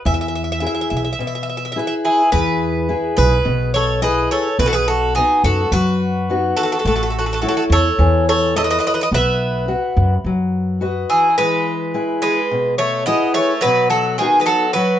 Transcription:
0.05 upright bass E2, steel-string acoustic guitar E3, bouzouki E5
0.14 bouzouki E5
0.21 bouzouki E5
0.28 bouzouki E5
0.35 bouzouki E5
0.44 bouzouki E5
0.52 bouzouki E5
0.60 steel-string acoustic guitar E4 G#4 B4, bouzouki E5
0.67 bouzouki E5
0.75 bouzouki E5
0.81 bouzouki E5
0.90 upright bass B1, bouzouki E5
0.97 bouzouki E5
1.04 bouzouki E5
1.13 bouzouki E5
1.19 steel-string acoustic guitar B2, bouzouki E5
1.27 bouzouki E5
1.35 bouzouki E5
1.43 bouzouki E5
1.49 bouzouki E5
1.57 bouzouki E5
1.65 bouzouki E5
1.72 steel-string acoustic guitar E4, bouzouki E5
1.76 steel-string acoustic guitar G#4 B4, bouzouki E5
1.87 bouzouki E5
2.05 bouzouki E4 G#4
2.32 upright bass E2, steel-string acoustic guitar E3, bouzouki G#4 B4
2.89 steel-string acoustic guitar E4 G#4 B4
3.17 upright bass B1, bouzouki G#4 B4
3.45 upright bass B1, steel-string acoustic guitar B2
3.74 bouzouki A4 C#5
4.02 steel-string acoustic guitar E4 G#4 B4, bouzouki B4 D#5
4.31 bouzouki A4 C#5
4.59 upright bass B1, steel-string acoustic guitar B2, bouzouki F#4 B4
4.66 bouzouki F#4 A4
4.73 bouzouki G#4 B4
4.88 bouzouki F#4 A4
5.15 steel-string acoustic guitar B3 D#4 F#4, bouzouki D#4 G#4
5.44 upright bass F#2, bouzouki F#4 A4
5.72 upright bass F#2, steel-string acoustic guitar F#3, bouzouki F#4 B4
6.30 steel-string acoustic guitar B3 D#4 F#4
6.57 bouzouki F#4 A4
6.63 bouzouki F#4 A4
6.72 bouzouki F#4 A4
6.79 bouzouki F#4 A4
6.85 upright bass A1, steel-string acoustic guitar A3, bouzouki F#4 A4
6.96 bouzouki F#4 A4
7.03 bouzouki F#4 A4
7.10 bouzouki F#4 A4
7.19 bouzouki F#4 A4
7.26 bouzouki F#4 A4
7.33 bouzouki F#4 A4
7.41 steel-string acoustic guitar E4 A4 C#5, bouzouki F#4 A4
7.48 bouzouki F#4 A4
7.57 bouzouki F#4 A4
7.70 upright bass E2, bouzouki A4 C#5
7.99 upright bass E2, steel-string acoustic guitar E3
8.29 bouzouki A4 C#5
8.55 steel-string acoustic guitar E4 A4 C#5, bouzouki A4 D#5
8.64 bouzouki B4 D#5
8.70 bouzouki B4 D#5
8.79 bouzouki B4 D#5
8.87 bouzouki B4 D#5
8.94 bouzouki B4 D#5
9.01 bouzouki B4 D#5
9.12 upright bass B1, steel-string acoustic guitar B3, bouzouki B4 E5
9.68 steel-string acoustic guitar F#4 B4 F#5
9.97 upright bass F#2
10.24 upright bass F#2, steel-string acoustic guitar F#3
10.81 steel-string acoustic guitar F#4 B4 D#5
11.10 bouzouki E3 G#4
11.38 steel-string acoustic guitar E3, bouzouki G#3 B4
11.94 steel-string acoustic guitar E4 G#4 B4
12.22 bouzouki G#3 B4
12.51 steel-string acoustic guitar B2
12.78 bouzouki A3 C#5
13.06 bouzouki B3 D#5, steel-string acoustic guitar E4 G#4 B4
13.34 bouzouki A3 C#5
13.61 steel-string acoustic guitar B2, bouzouki F#3 B4
13.90 bouzouki F#3 A4
14.18 bouzouki D#3 G#4, steel-string acoustic guitar B3 D#4 F#4
14.40 bouzouki G#3 B4
14.46 bouzouki F#3 A4
14.73 bouzouki F#3 B4, steel-string acoustic guitar F#3

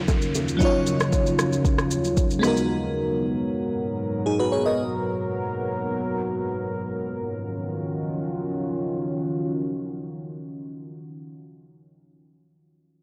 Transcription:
Already playing: ambient pad D#2 C#3 F#3 F4, fm electric piano F#3 C#4 D#4 F4 A#4, downlifter
0.08 kick, high bongo, shaker
0.22 shaker
0.35 high bongo, shaker
0.48 shaker
0.57 fm electric piano F#3 C#4 D#4, kick, shaker
0.63 fm electric piano F4 C#5
0.86 shaker
1.00 cross-stick, shaker
1.12 kick, shaker
1.26 shaker
1.39 cross-stick, shaker
1.53 shaker
1.65 kick, shaker
1.78 cross-stick, shaker
1.91 shaker
2.04 shaker
2.17 kick, shaker
2.31 shaker
2.39 ambient pad G#2 F#3 B3 A#4, fm electric piano G#3 B3 D#4, cross-stick
2.43 fm electric piano F#4 A#4, shaker
2.57 shaker
4.26 fm electric piano D#4 G#4
4.40 fm electric piano F#4 B4
4.52 fm electric piano G#4 C#5
4.66 fm electric piano A#4 D#5
6.86 ambient pad D#3 C#4 F4 F#4

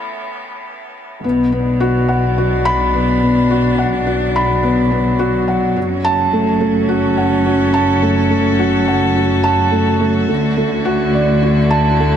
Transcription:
Already playing: string quartet A2 E3 B3 C#4, felt piano A3
1.24 double bass section B1, string quartet B2, felt piano B3
1.46 string quartet F#3
1.52 felt piano B3, string quartet D4
1.80 felt piano F#4
2.08 felt piano F#5
2.38 felt piano F#4
2.65 felt piano B5
2.94 felt piano B3
3.22 felt piano B3
3.50 felt piano F#4
3.78 felt piano F#5
4.06 felt piano F#4
4.36 felt piano B5
4.63 felt piano B3
4.91 felt piano B3
5.19 felt piano F#4
5.48 felt piano F#5
5.76 double bass section F#1, felt piano F#4
5.88 string quartet C#4
5.97 string quartet F#4
6.05 felt piano A5
6.33 felt piano A3
6.61 felt piano A3
6.89 felt piano F#4, string quartet A4
7.17 felt piano F#5
7.46 felt piano F#4
7.74 felt piano A5
8.02 felt piano A3
8.30 felt piano A3
8.59 felt piano F#4
8.88 felt piano F#5
9.16 felt piano F#4
9.44 felt piano A5
9.72 felt piano A3
10.00 felt piano A3
10.28 double bass section D2, string quartet D3, felt piano A3
10.52 string quartet A3
10.57 felt piano A3
10.72 string quartet E4
10.85 felt piano F#4
11.14 felt piano D5
11.43 felt piano F#4
11.71 felt piano A5
12.00 felt piano A3

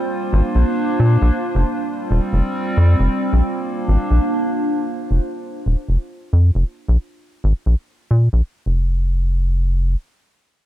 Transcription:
Already playing: ambient pad A#3 C4 F4 C5
0.06 ambient pad D4
0.33 analog synth bass G#1
0.55 analog synth bass A#1
1.00 analog synth bass A#2
1.22 analog synth bass A#1
1.55 analog synth bass F1, ambient pad G3
1.78 ambient pad C4
2.11 analog synth bass D#1
2.33 analog synth bass F1
2.77 analog synth bass F2
3.00 analog synth bass F1
3.33 analog synth bass A#1, ambient pad A#3
3.51 ambient pad D4
3.88 analog synth bass G#1
4.11 analog synth bass A#1
5.11 analog synth bass F1
5.66 analog synth bass D#1
5.89 analog synth bass F1
6.33 analog synth bass F2
6.55 analog synth bass F1
6.88 analog synth bass A#1
7.44 analog synth bass G#1
7.66 analog synth bass A#1
8.11 analog synth bass A#2
8.33 analog synth bass A#1
8.66 analog synth bass F1

